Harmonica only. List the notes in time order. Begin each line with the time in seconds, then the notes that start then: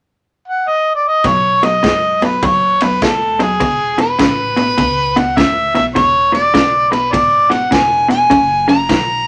0.48 F#5
0.69 D#5
0.96 D5
1.07 D#5
1.27 C#5
1.65 D#5
2.25 B4
2.46 C#5
2.82 B4
3.03 A4
3.42 G#4
4.01 B4
5.19 F#5
5.38 E5
5.75 E5
5.96 C#5
6.34 D5
6.91 B4
7.12 D5
7.51 F#5
7.74 G#5
8.10 G#5
8.69 A#5